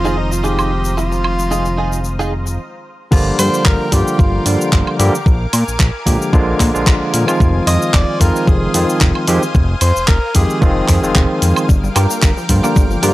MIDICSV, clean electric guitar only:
0, 0, Header, 1, 3, 480
1, 0, Start_track
1, 0, Tempo, 535714
1, 876, Time_signature, 4, 2, 24, 8
1, 11770, End_track
2, 0, Start_track
2, 0, Title_t, "Clean electric guitar"
2, 0, Program_c, 0, 27
2, 41, Note_on_c, 0, 63, 106
2, 47, Note_on_c, 0, 65, 85
2, 47, Note_on_c, 0, 68, 125
2, 154, Note_off_c, 0, 63, 0
2, 156, Note_off_c, 0, 65, 0
2, 157, Note_off_c, 0, 68, 0
2, 391, Note_on_c, 0, 63, 84
2, 395, Note_on_c, 0, 68, 90
2, 397, Note_on_c, 0, 65, 63
2, 634, Note_off_c, 0, 63, 0
2, 635, Note_off_c, 0, 65, 0
2, 636, Note_off_c, 0, 68, 0
2, 1351, Note_on_c, 0, 63, 84
2, 1356, Note_on_c, 0, 68, 88
2, 1358, Note_on_c, 0, 65, 67
2, 1484, Note_off_c, 0, 63, 0
2, 1485, Note_off_c, 0, 65, 0
2, 1486, Note_off_c, 0, 68, 0
2, 1591, Note_on_c, 0, 63, 90
2, 1598, Note_on_c, 0, 65, 70
2, 1598, Note_on_c, 0, 68, 88
2, 1779, Note_off_c, 0, 63, 0
2, 1781, Note_off_c, 0, 65, 0
2, 1782, Note_off_c, 0, 68, 0
2, 1965, Note_on_c, 0, 68, 111
2, 1966, Note_on_c, 0, 65, 94
2, 1967, Note_on_c, 0, 63, 96
2, 2075, Note_off_c, 0, 63, 0
2, 2075, Note_off_c, 0, 65, 0
2, 2076, Note_off_c, 0, 68, 0
2, 10714, Note_on_c, 0, 67, 100
2, 10715, Note_on_c, 0, 65, 99
2, 10717, Note_on_c, 0, 70, 124
2, 10719, Note_on_c, 0, 62, 95
2, 11019, Note_off_c, 0, 62, 0
2, 11020, Note_off_c, 0, 65, 0
2, 11021, Note_off_c, 0, 67, 0
2, 11022, Note_off_c, 0, 70, 0
2, 11322, Note_on_c, 0, 67, 83
2, 11324, Note_on_c, 0, 65, 78
2, 11326, Note_on_c, 0, 70, 98
2, 11328, Note_on_c, 0, 62, 78
2, 11499, Note_off_c, 0, 62, 0
2, 11500, Note_off_c, 0, 65, 0
2, 11500, Note_off_c, 0, 67, 0
2, 11501, Note_off_c, 0, 70, 0
2, 11672, Note_on_c, 0, 67, 110
2, 11674, Note_on_c, 0, 65, 101
2, 11675, Note_on_c, 0, 62, 110
2, 11676, Note_on_c, 0, 70, 127
2, 11770, Note_off_c, 0, 62, 0
2, 11770, Note_off_c, 0, 65, 0
2, 11770, Note_off_c, 0, 67, 0
2, 11770, Note_off_c, 0, 70, 0
2, 11770, End_track
3, 0, Start_track
3, 0, Title_t, "Muted clean electric guitar strokes"
3, 282, Note_on_c, 9, 29, 30
3, 371, Note_off_c, 9, 29, 0
3, 872, Note_on_c, 9, 29, 112
3, 962, Note_off_c, 9, 29, 0
3, 1001, Note_on_c, 9, 29, 32
3, 1091, Note_off_c, 9, 29, 0
3, 2202, Note_on_c, 9, 29, 32
3, 2292, Note_off_c, 9, 29, 0
3, 11770, End_track
0, 0, End_of_file